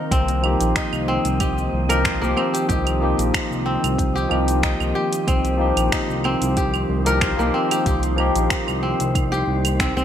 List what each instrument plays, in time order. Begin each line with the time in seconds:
Already playing: analog synth pad D#3 A#3 C4 F4 C5, synth texture A#3 A#4, kora C4 D#4
0.11 analog synth bass C2, kora C4, synth texture D#4 D#5, kick, closed hi-hat, cabasa
0.28 closed hi-hat, cabasa
0.41 tine electric piano F3 A#3 D#4, claves
0.45 tine electric piano G4
0.61 analog synth bass A#1, closed hi-hat, cabasa
0.76 kora D#4, finger snap, kick, closed hi-hat, cabasa
0.93 analog synth bass C2, cabasa, claves
1.00 analog synth pad G4
1.08 kora C4
1.25 analog synth bass C2, closed hi-hat, cabasa
1.40 kora G4, kick, closed hi-hat, cabasa, claves
1.58 cabasa
1.73 analog synth bass C2
1.89 tine electric piano F3 A#3 D#4 G4, kora A#4, closed hi-hat, cabasa, claves
2.05 kora C5, finger snap, kick, closed hi-hat, cabasa
2.20 analog synth bass C2, tine electric piano F3 A#3 D#4, kora A#3, cabasa
2.24 tine electric piano G4
2.37 kora C4, claves
2.54 kora G4, closed hi-hat, cabasa
2.69 analog synth bass C2, kora G4, kick, closed hi-hat, cabasa
2.87 closed hi-hat, cabasa, claves
3.00 tine electric piano F3 A#3 D#4 G4
3.18 analog synth bass A#1, closed hi-hat, cabasa
3.34 finger snap, kick, closed hi-hat, cabasa, claves
3.51 analog synth bass C2, cabasa
3.66 kora C4
3.83 analog synth bass C2, closed hi-hat, cabasa, claves
3.98 kick, closed hi-hat, cabasa
4.16 kora G4, cabasa
4.28 analog synth bass C2, tine electric piano F3 A#3 D#4, claves
4.32 tine electric piano G4
4.48 closed hi-hat, cabasa
4.63 kora D#4, finger snap, kick, closed hi-hat, cabasa
4.80 analog synth bass C2, cabasa, claves
4.95 kora G4
5.13 closed hi-hat, cabasa
5.27 analog synth bass C2, kora C4, synth texture C5, kick, closed hi-hat, cabasa, claves
5.45 closed hi-hat, cabasa
5.57 tine electric piano F3 A#3 D#4 G4
5.77 analog synth bass A#1, closed hi-hat, cabasa, claves
5.92 kora D#4, finger snap, kick, closed hi-hat, cabasa
6.09 analog synth bass C2, cabasa
6.24 kora C4, claves
6.42 analog synth bass C2, closed hi-hat, cabasa
6.57 kora G4, kick, closed hi-hat, cabasa
6.74 cabasa, claves
6.89 analog synth bass C2
7.05 tine electric piano F3 A#3 D#4 G4, kora A#4, closed hi-hat, cabasa
7.21 kora C5, finger snap, kick, closed hi-hat, cabasa, claves
7.36 analog synth bass C2, tine electric piano F3 A#3 D#4, kora A#3
7.40 tine electric piano G4, cabasa
7.54 kora C4
7.71 kora G4, closed hi-hat, cabasa, claves
7.86 analog synth bass C2, kora G4, kick, closed hi-hat, cabasa
8.03 closed hi-hat, cabasa
8.16 tine electric piano F3 A#3 D#4 G4, claves
8.36 analog synth bass A#1, closed hi-hat, cabasa
8.50 finger snap, kick, closed hi-hat, cabasa
8.68 analog synth bass C2, cabasa, claves
8.83 kora C4
9.00 analog synth bass C2, closed hi-hat, cabasa
9.15 kick, closed hi-hat, cabasa, claves
9.32 kora G4, cabasa
9.47 analog synth bass C2
9.65 closed hi-hat, cabasa, claves
9.80 kora C4, finger snap, kick, closed hi-hat, cabasa
9.97 analog synth bass C2, kora C4, cabasa